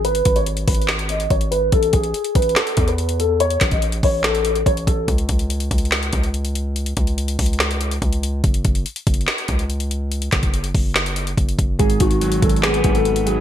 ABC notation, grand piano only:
X:1
M:4/4
L:1/16
Q:1/4=143
K:G#phr
V:1 name="Grand piano"
B3 c z2 B2 z2 d2 c2 B2 | A2 G4 B2 A3 B3 A2 | c3 d z2 c2 A4 c2 A2 | z16 |
z16 | z16 | z16 | G2 F4 A2 G3 A3 G2 |]